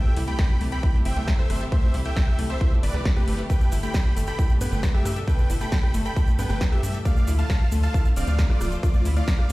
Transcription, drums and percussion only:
0.17 open hi-hat
0.28 closed hi-hat
0.39 kick, snare, closed hi-hat
0.61 open hi-hat
0.72 closed hi-hat
0.83 kick, closed hi-hat
1.05 open hi-hat
1.28 kick, snare, closed hi-hat
1.39 cross-stick
1.50 cross-stick, open hi-hat
1.61 closed hi-hat
1.72 kick, closed hi-hat
1.94 open hi-hat
2.05 closed hi-hat
2.17 kick, snare, closed hi-hat
2.28 cross-stick
2.39 open hi-hat
2.50 closed hi-hat
2.61 kick, closed hi-hat
2.83 open hi-hat
2.94 cross-stick, snare, closed hi-hat
3.05 kick, snare, closed hi-hat
3.17 cross-stick
3.28 open hi-hat
3.39 closed hi-hat
3.50 kick, closed hi-hat, shaker
3.61 shaker
3.72 open hi-hat, shaker
3.83 closed hi-hat, shaker
3.94 kick, snare, closed hi-hat, shaker
4.17 open hi-hat, shaker
4.27 closed hi-hat, shaker
4.39 kick, closed hi-hat, shaker
4.49 shaker
4.61 open hi-hat, shaker
4.72 closed hi-hat, shaker
4.83 kick, snare, closed hi-hat, shaker
4.94 cross-stick
5.05 cross-stick, open hi-hat, shaker
5.16 closed hi-hat, shaker
5.28 kick, closed hi-hat, shaker
5.39 shaker
5.50 open hi-hat, shaker
5.61 closed hi-hat, shaker
5.72 kick, snare, closed hi-hat, shaker
5.83 cross-stick
5.94 open hi-hat, shaker
6.05 closed hi-hat, shaker
6.16 kick, closed hi-hat, shaker
6.27 shaker
6.39 open hi-hat, shaker
6.50 cross-stick, snare, closed hi-hat, shaker
6.61 kick, snare, closed hi-hat, shaker
6.72 cross-stick
6.83 open hi-hat, shaker
6.94 closed hi-hat, shaker
7.05 kick, closed hi-hat, shaker
7.17 shaker
7.27 open hi-hat, shaker
7.39 closed hi-hat, shaker
7.50 kick, snare, closed hi-hat, shaker
7.72 open hi-hat, shaker
7.83 closed hi-hat, shaker
7.94 kick, closed hi-hat, shaker
8.05 shaker
8.16 open hi-hat, shaker
8.27 closed hi-hat, shaker
8.39 kick, snare, closed hi-hat, shaker
8.50 cross-stick
8.61 cross-stick, open hi-hat, shaker
8.72 closed hi-hat, shaker
8.83 kick, closed hi-hat, shaker
8.94 shaker
9.05 open hi-hat, shaker
9.17 closed hi-hat, shaker
9.28 kick, snare, closed hi-hat, shaker
9.39 cross-stick

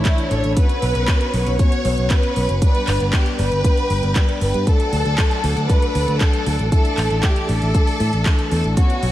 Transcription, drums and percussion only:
0.05 kick, clap, closed hi-hat
0.18 closed hi-hat
0.31 closed hi-hat
0.44 closed hi-hat
0.57 kick, closed hi-hat
0.69 closed hi-hat
0.82 open hi-hat
0.95 closed hi-hat
1.08 kick, clap, closed hi-hat
1.21 closed hi-hat
1.34 open hi-hat
1.46 closed hi-hat
1.59 kick, closed hi-hat
1.72 closed hi-hat
1.85 open hi-hat
1.98 closed hi-hat
2.10 kick, clap, closed hi-hat
2.23 closed hi-hat
2.36 open hi-hat
2.49 closed hi-hat
2.62 kick, closed hi-hat
2.75 closed hi-hat
2.87 clap, open hi-hat
3.00 closed hi-hat
3.13 kick, clap, closed hi-hat
3.26 closed hi-hat
3.39 open hi-hat
3.52 closed hi-hat
3.64 kick, closed hi-hat
3.77 closed hi-hat
3.90 open hi-hat
4.03 closed hi-hat
4.16 kick, clap, closed hi-hat
4.29 closed hi-hat
4.41 open hi-hat
4.54 closed hi-hat
4.67 kick, closed hi-hat
4.80 closed hi-hat
4.93 open hi-hat
5.05 closed hi-hat
5.18 kick, clap, closed hi-hat
5.31 closed hi-hat
5.44 open hi-hat
5.57 closed hi-hat
5.69 kick, closed hi-hat
5.82 closed hi-hat
5.95 open hi-hat
6.08 closed hi-hat
6.21 kick, clap, closed hi-hat
6.34 closed hi-hat
6.46 open hi-hat
6.59 closed hi-hat
6.72 kick, closed hi-hat
6.85 closed hi-hat
6.98 clap, open hi-hat
7.10 closed hi-hat
7.23 kick, clap, closed hi-hat
7.36 closed hi-hat
7.49 open hi-hat
7.62 closed hi-hat
7.75 kick, closed hi-hat
7.87 open hi-hat
8.00 open hi-hat
8.13 closed hi-hat
8.26 kick, clap, closed hi-hat
8.39 closed hi-hat
8.51 open hi-hat
8.64 closed hi-hat
8.77 kick, closed hi-hat
8.90 closed hi-hat
9.03 open hi-hat

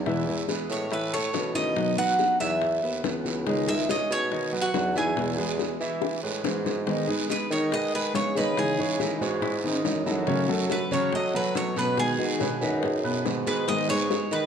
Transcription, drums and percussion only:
0.06 high bongo, long guiro
0.27 high bongo
0.49 high bongo, short guiro
0.70 high bongo, short guiro
0.91 high bongo, long guiro
1.13 high bongo
1.33 high bongo, low bongo, short guiro
1.55 short guiro
1.76 high bongo, long guiro
2.19 high bongo, short guiro
2.40 high bongo, short guiro
2.62 high bongo, long guiro
2.83 high bongo
3.04 high bongo, low bongo, short guiro
3.25 high bongo, short guiro
3.47 high bongo, long guiro
3.68 high bongo
3.89 high bongo, short guiro
4.11 high bongo, short guiro
4.32 high bongo, long guiro
4.53 high bongo
4.74 high bongo, low bongo, short guiro
4.96 short guiro
5.17 high bongo, long guiro
5.59 high bongo, short guiro
5.81 high bongo, short guiro
6.02 high bongo, long guiro
6.44 low bongo, short guiro
6.66 low bongo, short guiro
6.87 high bongo, long guiro
7.30 high bongo, short guiro
7.51 high bongo, short guiro
7.72 high bongo, long guiro
7.94 high bongo
8.15 high bongo, low bongo, short guiro
8.36 high bongo, short guiro
8.57 high bongo, long guiro
9.00 high bongo, short guiro
9.21 high bongo, short guiro
9.42 high bongo, long guiro
9.64 high bongo
9.85 high bongo, low bongo, short guiro
10.06 high bongo, short guiro
10.27 high bongo, long guiro
10.70 high bongo, short guiro
10.91 high bongo, short guiro
11.12 high bongo, long guiro
11.34 high bongo
11.55 high bongo, low bongo, short guiro
11.76 high bongo, short guiro
11.97 high bongo, long guiro
12.40 high bongo, short guiro
12.61 high bongo, short guiro
12.83 high bongo, long guiro
13.04 high bongo
13.26 high bongo, low bongo, short guiro
13.47 high bongo, short guiro
13.68 high bongo, long guiro
14.11 high bongo, short guiro
14.31 high bongo, short guiro

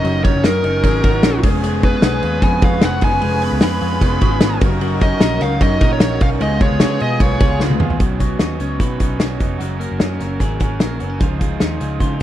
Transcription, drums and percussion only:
0.05 ride
0.25 kick, ride
0.44 snare, ride
0.64 ride
0.84 kick, ride
1.03 kick, ride
1.23 snare, ride
1.43 kick, open hi-hat, ride
1.64 hi-hat pedal, ride
1.83 kick, ride
2.02 snare, ride
2.23 ride
2.42 kick, ride
2.62 kick, ride
2.81 snare, ride
3.01 kick, ride
3.22 ride
3.42 ride
3.61 snare, ride
3.81 ride
4.01 kick, ride
4.21 kick, ride
4.41 snare, ride
4.61 kick, ride
4.81 ride
5.01 kick, ride
5.21 snare, ride
5.40 snare, ride
5.61 kick, ride
5.81 kick, ride
6.00 snare, ride
6.21 kick, ride
6.41 ride
6.61 kick, ride
6.80 snare, ride
7.00 ride
7.20 kick, ride
7.40 kick, ride
7.60 snare
7.70 high tom
7.80 mid tom
7.90 floor tom
8.00 kick, closed hi-hat
8.20 kick, closed hi-hat
8.39 snare, closed hi-hat
8.60 closed hi-hat
8.80 kick, closed hi-hat
9.00 kick, closed hi-hat
9.20 snare, closed hi-hat
9.40 kick, closed hi-hat
9.60 closed hi-hat
9.81 closed hi-hat
10.00 snare, closed hi-hat
10.20 snare, closed hi-hat
10.40 kick, closed hi-hat
10.60 kick, closed hi-hat
10.80 snare, closed hi-hat
11.00 closed hi-hat
11.20 kick, closed hi-hat
11.41 kick, closed hi-hat
11.60 snare, closed hi-hat
11.81 closed hi-hat
12.00 kick, closed hi-hat

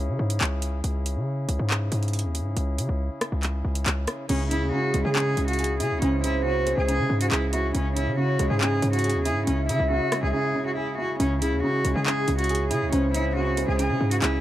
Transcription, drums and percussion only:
0.30 closed hi-hat
0.41 clap, closed hi-hat
0.62 closed hi-hat
0.84 closed hi-hat
1.06 closed hi-hat
1.49 closed hi-hat
1.70 clap
1.92 closed hi-hat
2.03 closed hi-hat
2.08 closed hi-hat
2.13 closed hi-hat
2.19 closed hi-hat
2.35 closed hi-hat
2.57 closed hi-hat
2.78 closed hi-hat
3.21 cross-stick, closed hi-hat
3.43 clap, closed hi-hat
3.75 closed hi-hat
3.86 clap, closed hi-hat
4.07 cross-stick, closed hi-hat
4.29 closed hi-hat, crash
4.51 closed hi-hat
4.94 closed hi-hat
5.16 clap
5.37 closed hi-hat
5.48 closed hi-hat
5.53 closed hi-hat
5.59 closed hi-hat
5.64 closed hi-hat
5.80 closed hi-hat
6.02 closed hi-hat
6.24 closed hi-hat
6.67 closed hi-hat
6.89 closed hi-hat
7.21 closed hi-hat
7.31 clap, closed hi-hat
7.53 closed hi-hat
7.75 closed hi-hat
7.97 closed hi-hat
8.39 closed hi-hat
8.61 clap
8.82 closed hi-hat
8.93 closed hi-hat
8.99 closed hi-hat
9.04 closed hi-hat
9.10 closed hi-hat
9.25 closed hi-hat
9.47 closed hi-hat
9.69 closed hi-hat
10.12 cross-stick, closed hi-hat
11.20 closed hi-hat
11.42 closed hi-hat
11.85 closed hi-hat
12.06 clap
12.28 closed hi-hat
12.39 closed hi-hat
12.44 closed hi-hat
12.49 closed hi-hat
12.55 closed hi-hat
12.71 closed hi-hat
12.93 closed hi-hat
13.14 closed hi-hat
13.57 closed hi-hat
13.79 closed hi-hat
14.11 closed hi-hat
14.22 clap, closed hi-hat

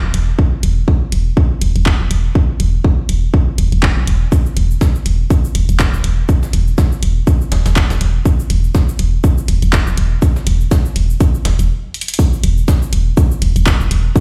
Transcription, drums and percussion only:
0.14 closed hi-hat
0.39 kick
0.63 closed hi-hat
0.88 kick
1.12 closed hi-hat
1.37 kick
1.61 closed hi-hat
1.76 closed hi-hat
1.86 kick, clap
2.11 closed hi-hat
2.35 kick
2.60 closed hi-hat
2.84 kick
3.09 closed hi-hat
3.34 kick
3.58 closed hi-hat
3.72 closed hi-hat
3.83 kick, clap
4.07 closed hi-hat
4.32 kick, closed hi-hat, shaker
4.46 shaker
4.57 closed hi-hat
4.71 shaker
4.81 kick, snare, closed hi-hat, shaker
4.95 shaker
5.06 closed hi-hat
5.30 kick, closed hi-hat, shaker
5.44 shaker
5.55 closed hi-hat
5.69 closed hi-hat, shaker
5.80 kick, snare, clap, closed hi-hat, shaker
5.94 shaker
6.04 closed hi-hat
6.29 kick, closed hi-hat, shaker
6.43 snare, shaker
6.53 closed hi-hat
6.67 shaker
6.78 kick, snare, closed hi-hat, shaker
6.92 shaker
7.03 closed hi-hat
7.27 kick, closed hi-hat, shaker
7.41 shaker
7.52 snare, closed hi-hat
7.66 snare, closed hi-hat, shaker
7.76 kick, snare, clap, closed hi-hat, shaker
7.90 snare, closed hi-hat, shaker
8.01 snare, closed hi-hat
8.25 kick, closed hi-hat, shaker
8.40 shaker
8.50 closed hi-hat
8.64 shaker
8.75 kick, snare, closed hi-hat, shaker
8.89 shaker
8.99 closed hi-hat
9.24 kick, closed hi-hat, shaker
9.38 shaker
9.48 closed hi-hat
9.62 closed hi-hat, shaker
9.73 kick, snare, clap, closed hi-hat, shaker
9.87 shaker
9.97 closed hi-hat
10.22 kick, closed hi-hat, shaker
10.36 snare, shaker
10.47 closed hi-hat
10.61 shaker
10.71 kick, snare, closed hi-hat, shaker
10.85 shaker
10.96 closed hi-hat
11.10 shaker
11.20 kick, closed hi-hat, shaker
11.35 shaker
11.45 snare, closed hi-hat
11.59 closed hi-hat, shaker
11.94 closed hi-hat
12.01 closed hi-hat
12.08 closed hi-hat
12.14 closed hi-hat
12.19 kick, closed hi-hat, shaker
12.33 shaker
12.44 closed hi-hat
12.58 shaker
12.68 kick, snare, closed hi-hat, shaker
12.82 shaker
12.93 closed hi-hat
13.17 kick, closed hi-hat, shaker
13.31 shaker
13.42 closed hi-hat
13.56 closed hi-hat, shaker
13.66 kick, snare, clap, closed hi-hat, shaker
13.80 shaker
13.91 closed hi-hat
14.16 kick, closed hi-hat, shaker

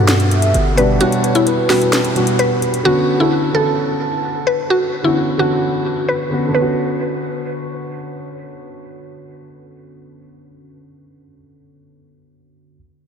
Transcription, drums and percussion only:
0.08 snare, closed hi-hat
0.20 closed hi-hat
0.31 closed hi-hat
0.42 closed hi-hat
0.54 closed hi-hat
0.78 closed hi-hat
1.01 closed hi-hat
1.12 closed hi-hat
1.24 closed hi-hat
1.35 closed hi-hat
1.47 closed hi-hat
1.70 snare, open hi-hat
1.82 closed hi-hat
1.93 snare, closed hi-hat
2.05 closed hi-hat
2.16 closed hi-hat
2.27 closed hi-hat
2.39 closed hi-hat
2.62 closed hi-hat
2.74 closed hi-hat

